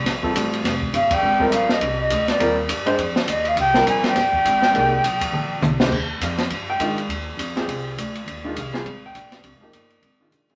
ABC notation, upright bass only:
X:1
M:4/4
L:1/8
Q:"Swing" 1/4=205
K:Ablyd
V:1 name="Upright bass" clef=bass
B,,,2 =A,,,2 F,,,2 G,,,2 | A,,,2 B,,,2 C,,2 D,,2 | E,,2 G,,2 F,,2 E,,2 | C,,2 B,,,2 G,,,2 A,,,2 |
C,,2 _C,,2 B,,,2 =C,,2 | E,,2 F,,2 G,,2 A,,2 | E,,2 F,,2 C,,2 D,,2 | E,,2 C,,2 A,,,2 B,,,2 |
(3C,, A,,, G,,, G,,,2 A,,,2 B,,,2 |]